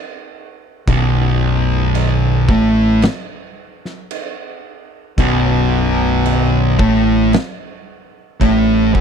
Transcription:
0.88 B0 B1 B2, kick, crash
1.95 crash
2.49 A1 A2 A3, kick
3.02 snare, crash
3.85 snare
4.11 crash
5.18 B0 B1 B2, kick, crash
6.26 crash
6.79 A1 A2 A3, kick
7.33 snare, crash
8.40 A1 A2 A3, kick, crash
8.94 F#1 F#2 F#3, kick

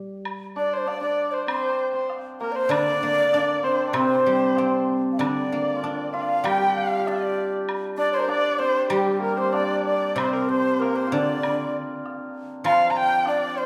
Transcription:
Already playing: G3
0.25 high woodblock
0.56 D4 D5
0.73 C5
0.86 D4 D5, low woodblock
1.01 D4 D5
1.30 C5 D5
1.47 C4 C5, high woodblock
1.93 C4 C5
2.10 low woodblock
2.40 A#3 A#4
2.52 C5 D5
2.56 C5
2.69 D3 D4 D5, high woodblock
3.03 A#3
3.33 D4, low woodblock
3.63 C4 C5
3.87 D4 D5
3.93 C3 C4 C5, high woodblock
4.26 G3
4.55 C4, low woodblock
5.12 F5
5.18 D3 D4 D5, high woodblock
5.52 A#3
5.76 F4
5.83 D4, low woodblock
6.13 F4 F5
6.21 D5
6.29 F5
6.44 G3 G4 G5, high woodblock
6.58 G4 G5
6.76 F5
6.99 F4
7.06 D4 D5, low woodblock
7.69 high woodblock
7.97 D4 D5
8.13 C5
8.19 A#4 C5
8.28 D4 D5, low woodblock
8.59 C4 C5
8.89 G3 G4, high woodblock
9.20 A#3 A#4
9.37 C4 C5
9.52 D4 D5, low woodblock
9.85 D5
10.16 C3 C4 C5, high woodblock
10.33 A#4
10.49 C4 C5
10.75 C4 C5
10.80 A#3 A#4, low woodblock
10.96 C5
11.07 F4
11.12 D3 D4 D5
11.43 high woodblock
12.06 low woodblock
12.64 F3 F4 F5, high woodblock
12.89 A#5
12.96 G5
13.26 D4 D5, low woodblock
13.58 C5

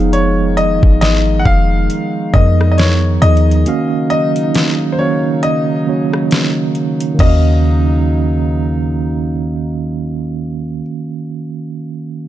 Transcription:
Already playing: F1 D#3 F3 G#3 B3 D#4 G#4 F5
0.13 C#5, closed hi-hat
0.57 D#5, closed hi-hat
0.83 G#1, kick
1.01 D#5, snare, closed hi-hat
1.39 F#5
1.45 F1 F5, kick
1.90 closed hi-hat
2.33 F2 F3 B3 D#4 G#4 A#4 D#5, kick
2.61 cross-stick
2.72 D#5
2.78 C#5, snare, closed hi-hat
3.22 D#2 F3 B3 D#4 G#4 D#5, closed hi-hat
3.37 closed hi-hat
3.51 closed hi-hat
3.66 C#3 D#3 F#3 A#3 C#4 D#4 F#4 F5, closed hi-hat
4.10 D#5, closed hi-hat
4.36 closed hi-hat
4.54 snare, closed hi-hat
4.92 C5
4.98 D#3 A#3 C#4 F#4 C#5 F5
5.43 D#5, closed hi-hat
5.86 D#3 A#3 C#4 F#4 C#5
6.13 cross-stick
6.31 snare, closed hi-hat
6.75 closed hi-hat
7.00 closed hi-hat
7.14 D#3 A#3
7.19 D#2 C#3 F#3 C#4 D#4 F#4 D#5, kick, crash
7.26 F5

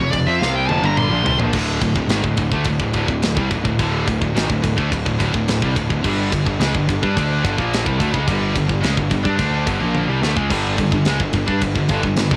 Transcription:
Already playing: C#5
0.00 F1 F2 C3
0.11 F1 F2 C3 D5, kick, ride
0.27 F2 F3 C4 E5
0.40 C2 C3 G3 C4 F5, snare
0.56 G5
0.68 F1 F2 C3 A5, high tom
0.82 G1 G2 D3 G3 A#5, high tom
0.97 C6, mid tom
1.10 A#1 A#2 F3
1.24 C2 C3 G3, floor tom
1.38 A#1 A#2 F3, floor tom
1.53 D1 D2 A2 D3, kick, crash
1.81 D1 D2 A2, kick, ride
1.96 D1 D2 A2, kick
2.08 G#1 G#2 D#3, snare, ride
2.24 D1 D2 A2, kick
2.37 D1 D2 A2, kick, ride
2.52 D2 D3 A3, kick
2.64 D1 D2 A2, kick, ride
2.80 D1 D2 A2, kick
2.93 D1 D2 A2, kick, ride
3.08 D1 D2 A2, kick
3.22 D1 D2 A2, snare, ride
3.37 C2 C3 G3, kick
3.51 D1 D2 A2, kick, ride
3.65 D1 D2 A2, kick
3.79 D1 D2 A2 D3, kick, ride
4.07 D1 D2 A2, kick, ride
4.22 D1 D2 A2, kick
4.35 G#1 G#2 D#3, snare, ride
4.49 D1 D2 A2, kick
4.64 D1 D2 A2, kick, ride
4.76 D2 D3 A3, kick
4.90 D1 D2 A2, kick, ride
5.06 D1 D2 A2, kick
5.20 D1 D2 A2, kick, ride
5.34 D1 D2 A2, kick
5.48 D1 D2 A2, snare, ride
5.62 C2 C3 G3, kick
5.75 D1 D2 A2, kick, ride
5.89 D1 D2 A2, kick
6.02 G1 G2 D3 G3, kick, crash
6.30 G1 G2 D3, kick, ride
6.45 G1 G2 D3, kick
6.60 C#2 C#3 G#3, snare, ride
6.74 G1 G2 D3, kick
6.88 G1 G2 D3, kick, ride
7.03 G2 G3 D4, kick
7.17 D2 D3 A3 D4, kick, ride
7.44 G1 G2 D3, kick, ride
7.58 A#1 A#2 F3 A#3, kick
7.73 snare, ride
7.85 C2 C3 G3, kick
8.00 D2 D3 A3, kick, ride
8.11 C#2 C#3 G#3, kick
8.15 C#3 G#3
8.27 G1 G2 D3 G3, kick, ride
8.53 G1 G2, kick, ride
8.57 G2 D3
8.66 G1 G2 D3, kick
8.71 G2 D3
8.81 C#2 C#3 G#3, snare, ride
8.85 C#3 G#3
8.94 G1 G2, kick
8.99 G2 D3
9.11 G1 G2 D3, kick, ride
9.25 G2 G3 D4, kick
9.35 D2 D3 D4, kick, ride
9.40 D3 A3 D4
9.67 G1 G2 D3, kick, ride
9.81 A#1 A#2 F3 A#3
9.95 high tom
10.09 C2 C3 G3
10.22 D2 D3 A3, snare
10.37 C#2 C#3 G#3, kick
10.50 G1 G2 D3 G3, kick, splash, crash
10.78 G1 G2 D3, kick, ride
10.92 G1 G2 D3, kick
11.05 C#2 C#3 G#3, snare, ride
11.20 G1 G2 D3, kick
11.33 G1 G2 D3, kick, ride
11.48 G2 G3 D4, kick
11.62 G1 G2 D3, kick, ride
11.75 G1 G2 D3, kick
11.89 G1 G2 D3, kick, ride
12.03 G1 G2 D3, kick
12.16 G1 G2 D3, snare, ride
12.31 F1 F2 C3, kick

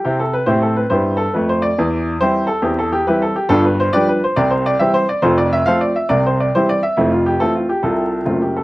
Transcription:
0.05 C3 C4 E4 G4
0.20 A4
0.33 B4
0.46 A2 C4 E4 G4 C5
0.62 A4
0.76 B4
0.90 G2 B3 E4 G4 C5
1.17 A4
1.34 F2 A3 B4
1.49 C5
1.62 D5
1.78 E2 E3
2.21 E3 G3 C4 E4 G4 C5
2.47 A4
2.62 E2 E3 C4 E4 G4
2.79 A4
2.92 G4
3.07 E3 G3 C4 E4 G4 B4
3.22 A4
3.36 G4
3.49 G1 G2 D4 F4 A4
3.65 B4
3.80 C5
3.93 F3 G3 D4 G4 B4 D5
4.08 B4
4.24 C5
4.36 C2 C3 D5
4.50 C5
4.66 D5
4.79 E3 G3 C4 G4 C5 E5
4.94 C5
5.09 D5
5.22 F1 F2 F4 A4 C5
5.38 D5
5.53 E5
5.66 F3 A3 C4 A4 C5 F5
5.81 D5
5.96 E5
6.09 C2 C3 D5
6.26 C5
6.40 D5
6.55 E3 G3 C4 E4 G4 C5
6.69 D5
6.83 E5
6.97 F1 F2 A3 C4 E4
7.12 F4
7.26 G4
7.40 E3 A3 C4 E4 F4 A4
7.55 F4
7.69 G4
7.83 C2 C3 E4 F4 A4
8.25 F#1 F#2 A3 C4 F4
8.42 G4
8.57 A4

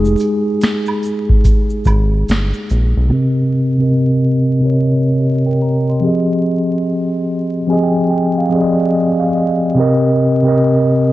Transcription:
Already playing: F1 G#3 D#4 G4 G#4
0.05 shaker
0.17 shaker, maracas
0.61 finger snap, snare, closed hi-hat, shaker, maracas
0.86 high woodblock, shaker
1.03 maracas, shaker
1.29 kick
1.44 kick, closed hi-hat, maracas, shaker
1.70 shaker
1.85 G#1, kick, high woodblock, shaker, maracas
2.29 G1, finger snap, snare, closed hi-hat, maracas, shaker
2.53 shaker
2.70 A#1, maracas, shaker
2.97 B1
3.08 C3 C4 G4
3.13 A#4 D#5
3.77 C3 C4 G4
3.82 A#4 D#5
4.60 C3 C4 G4
4.64 A#4 C#5
4.72 D#5
5.20 G4 D#5
5.46 A#4 G5
5.62 A#5
5.89 D#5 C6
6.01 F3 C4 G4
6.05 G#4 D#5
7.67 F3 C4 G4 G#5
7.71 G#4 D#5
7.83 G5
8.10 G5
8.38 F5
8.49 F3 C4 G4 D#5
8.54 G#4 D5
8.62 D#5
8.93 D#5
9.20 F5
9.35 D#5
9.75 C3 C4 G4
9.79 A#4 D#5
10.43 C3 C4 G4
10.47 A#4 D#5

